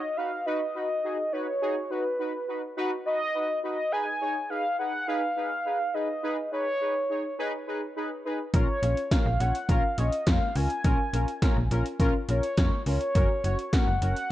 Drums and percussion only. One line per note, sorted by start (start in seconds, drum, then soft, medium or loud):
8.54 kick loud
8.54 closed hi-hat medium
8.83 closed hi-hat medium
8.97 closed hi-hat soft
9.11 kick loud
9.11 snare loud
9.11 closed hi-hat medium
9.40 closed hi-hat medium
9.55 closed hi-hat medium
9.69 kick loud
9.69 closed hi-hat medium
9.98 closed hi-hat medium
10.12 closed hi-hat medium
10.27 kick loud
10.27 snare loud
10.27 closed hi-hat medium
10.55 open hi-hat medium
10.70 closed hi-hat medium
10.84 kick loud
10.84 closed hi-hat medium
11.14 closed hi-hat medium
11.28 closed hi-hat soft
11.42 kick loud
11.42 snare loud
11.42 closed hi-hat medium
11.71 closed hi-hat medium
11.86 closed hi-hat medium
12.00 kick loud
12.00 closed hi-hat medium
12.29 closed hi-hat medium
12.43 closed hi-hat medium
12.57 kick loud
12.57 snare loud
12.57 closed hi-hat medium
12.86 open hi-hat medium
13.01 closed hi-hat soft
13.15 kick loud
13.15 closed hi-hat medium
13.44 closed hi-hat medium
13.59 closed hi-hat soft
13.73 kick loud
13.73 snare loud
13.73 closed hi-hat medium
14.02 closed hi-hat medium
14.16 closed hi-hat medium